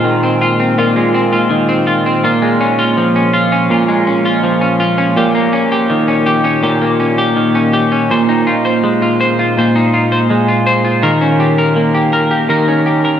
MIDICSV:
0, 0, Header, 1, 2, 480
1, 0, Start_track
1, 0, Tempo, 731707
1, 1476, Time_signature, 4, 2, 24, 8
1, 8659, End_track
2, 0, Start_track
2, 0, Title_t, "Clean electric guitar"
2, 0, Program_c, 0, 27
2, 0, Note_on_c, 0, 46, 75
2, 0, Note_on_c, 0, 56, 56
2, 0, Note_on_c, 0, 60, 54
2, 0, Note_on_c, 0, 65, 58
2, 29, Note_on_c, 0, 51, 60
2, 145, Note_off_c, 0, 60, 0
2, 152, Note_on_c, 0, 60, 51
2, 270, Note_off_c, 0, 65, 0
2, 272, Note_on_c, 0, 65, 57
2, 384, Note_off_c, 0, 60, 0
2, 392, Note_on_c, 0, 60, 53
2, 504, Note_off_c, 0, 46, 0
2, 512, Note_off_c, 0, 65, 0
2, 512, Note_on_c, 0, 46, 70
2, 514, Note_on_c, 0, 65, 59
2, 627, Note_off_c, 0, 56, 0
2, 630, Note_on_c, 0, 56, 47
2, 742, Note_off_c, 0, 60, 0
2, 750, Note_on_c, 0, 60, 51
2, 867, Note_off_c, 0, 65, 0
2, 870, Note_on_c, 0, 65, 54
2, 977, Note_off_c, 0, 51, 0
2, 985, Note_on_c, 0, 51, 57
2, 1099, Note_off_c, 0, 60, 0
2, 1107, Note_on_c, 0, 60, 52
2, 1224, Note_off_c, 0, 65, 0
2, 1227, Note_on_c, 0, 65, 58
2, 1345, Note_off_c, 0, 60, 0
2, 1353, Note_on_c, 0, 60, 55
2, 1461, Note_off_c, 0, 46, 0
2, 1469, Note_off_c, 0, 65, 0
2, 1469, Note_on_c, 0, 46, 69
2, 1472, Note_on_c, 0, 65, 59
2, 1518, Note_off_c, 0, 51, 0
2, 1522, Note_off_c, 0, 60, 0
2, 1585, Note_off_c, 0, 56, 0
2, 1588, Note_on_c, 0, 56, 55
2, 1709, Note_on_c, 0, 61, 53
2, 1821, Note_off_c, 0, 65, 0
2, 1829, Note_on_c, 0, 65, 57
2, 1949, Note_on_c, 0, 53, 61
2, 2069, Note_off_c, 0, 61, 0
2, 2072, Note_on_c, 0, 61, 51
2, 2180, Note_off_c, 0, 65, 0
2, 2188, Note_on_c, 0, 65, 58
2, 2307, Note_off_c, 0, 61, 0
2, 2310, Note_on_c, 0, 61, 52
2, 2423, Note_off_c, 0, 46, 0
2, 2425, Note_off_c, 0, 65, 0
2, 2429, Note_on_c, 0, 46, 73
2, 2435, Note_on_c, 0, 65, 51
2, 2540, Note_off_c, 0, 56, 0
2, 2548, Note_on_c, 0, 56, 49
2, 2668, Note_off_c, 0, 61, 0
2, 2671, Note_on_c, 0, 61, 52
2, 2783, Note_off_c, 0, 65, 0
2, 2791, Note_on_c, 0, 65, 55
2, 2902, Note_off_c, 0, 53, 0
2, 2910, Note_on_c, 0, 53, 60
2, 3024, Note_off_c, 0, 61, 0
2, 3026, Note_on_c, 0, 61, 51
2, 3140, Note_off_c, 0, 65, 0
2, 3148, Note_on_c, 0, 65, 61
2, 3264, Note_off_c, 0, 61, 0
2, 3267, Note_on_c, 0, 61, 54
2, 3380, Note_off_c, 0, 46, 0
2, 3388, Note_on_c, 0, 46, 73
2, 3389, Note_off_c, 0, 65, 0
2, 3392, Note_on_c, 0, 67, 59
2, 3440, Note_off_c, 0, 56, 0
2, 3441, Note_off_c, 0, 53, 0
2, 3507, Note_on_c, 0, 58, 54
2, 3624, Note_off_c, 0, 61, 0
2, 3627, Note_on_c, 0, 61, 57
2, 3744, Note_off_c, 0, 67, 0
2, 3752, Note_on_c, 0, 67, 57
2, 3869, Note_on_c, 0, 51, 64
2, 3981, Note_off_c, 0, 61, 0
2, 3989, Note_on_c, 0, 61, 52
2, 4101, Note_off_c, 0, 67, 0
2, 4109, Note_on_c, 0, 67, 58
2, 4218, Note_off_c, 0, 61, 0
2, 4226, Note_on_c, 0, 61, 54
2, 4339, Note_off_c, 0, 46, 0
2, 4344, Note_off_c, 0, 67, 0
2, 4347, Note_on_c, 0, 46, 76
2, 4352, Note_on_c, 0, 67, 59
2, 4463, Note_off_c, 0, 58, 0
2, 4471, Note_on_c, 0, 58, 48
2, 4583, Note_off_c, 0, 61, 0
2, 4591, Note_on_c, 0, 61, 52
2, 4703, Note_off_c, 0, 67, 0
2, 4711, Note_on_c, 0, 67, 57
2, 4829, Note_off_c, 0, 51, 0
2, 4831, Note_on_c, 0, 51, 62
2, 4945, Note_off_c, 0, 61, 0
2, 4953, Note_on_c, 0, 61, 52
2, 5065, Note_off_c, 0, 67, 0
2, 5073, Note_on_c, 0, 67, 62
2, 5186, Note_off_c, 0, 61, 0
2, 5194, Note_on_c, 0, 61, 56
2, 5309, Note_off_c, 0, 46, 0
2, 5315, Note_off_c, 0, 67, 0
2, 5317, Note_on_c, 0, 46, 72
2, 5321, Note_on_c, 0, 72, 60
2, 5362, Note_off_c, 0, 58, 0
2, 5363, Note_off_c, 0, 61, 0
2, 5436, Note_on_c, 0, 63, 57
2, 5555, Note_on_c, 0, 65, 57
2, 5575, Note_off_c, 0, 51, 0
2, 5666, Note_off_c, 0, 72, 0
2, 5674, Note_on_c, 0, 72, 52
2, 5796, Note_on_c, 0, 56, 63
2, 5910, Note_off_c, 0, 65, 0
2, 5918, Note_on_c, 0, 65, 58
2, 6031, Note_off_c, 0, 72, 0
2, 6039, Note_on_c, 0, 72, 60
2, 6153, Note_off_c, 0, 65, 0
2, 6161, Note_on_c, 0, 65, 53
2, 6275, Note_off_c, 0, 46, 0
2, 6277, Note_off_c, 0, 72, 0
2, 6281, Note_on_c, 0, 46, 69
2, 6288, Note_on_c, 0, 72, 59
2, 6397, Note_off_c, 0, 63, 0
2, 6400, Note_on_c, 0, 63, 51
2, 6511, Note_off_c, 0, 65, 0
2, 6519, Note_on_c, 0, 65, 49
2, 6631, Note_off_c, 0, 72, 0
2, 6638, Note_on_c, 0, 72, 54
2, 6751, Note_off_c, 0, 56, 0
2, 6759, Note_on_c, 0, 56, 60
2, 6869, Note_off_c, 0, 65, 0
2, 6877, Note_on_c, 0, 65, 54
2, 6989, Note_off_c, 0, 72, 0
2, 6997, Note_on_c, 0, 72, 61
2, 7107, Note_off_c, 0, 65, 0
2, 7115, Note_on_c, 0, 65, 56
2, 7233, Note_on_c, 0, 51, 69
2, 7234, Note_off_c, 0, 72, 0
2, 7237, Note_on_c, 0, 70, 62
2, 7283, Note_off_c, 0, 65, 0
2, 7285, Note_off_c, 0, 56, 0
2, 7287, Note_off_c, 0, 46, 0
2, 7353, Note_off_c, 0, 63, 0
2, 7355, Note_on_c, 0, 61, 55
2, 7477, Note_on_c, 0, 67, 56
2, 7596, Note_off_c, 0, 70, 0
2, 7599, Note_on_c, 0, 70, 59
2, 7715, Note_on_c, 0, 58, 63
2, 7834, Note_off_c, 0, 67, 0
2, 7836, Note_on_c, 0, 67, 54
2, 7954, Note_off_c, 0, 70, 0
2, 7957, Note_on_c, 0, 70, 60
2, 8072, Note_off_c, 0, 67, 0
2, 8075, Note_on_c, 0, 67, 51
2, 8191, Note_off_c, 0, 51, 0
2, 8194, Note_on_c, 0, 51, 68
2, 8197, Note_off_c, 0, 70, 0
2, 8200, Note_on_c, 0, 70, 62
2, 8310, Note_off_c, 0, 61, 0
2, 8318, Note_on_c, 0, 61, 50
2, 8434, Note_off_c, 0, 67, 0
2, 8437, Note_on_c, 0, 67, 49
2, 8556, Note_off_c, 0, 70, 0
2, 8559, Note_on_c, 0, 70, 51
2, 8659, Note_off_c, 0, 51, 0
2, 8659, Note_off_c, 0, 58, 0
2, 8659, Note_off_c, 0, 61, 0
2, 8659, Note_off_c, 0, 67, 0
2, 8659, Note_off_c, 0, 70, 0
2, 8659, End_track
0, 0, End_of_file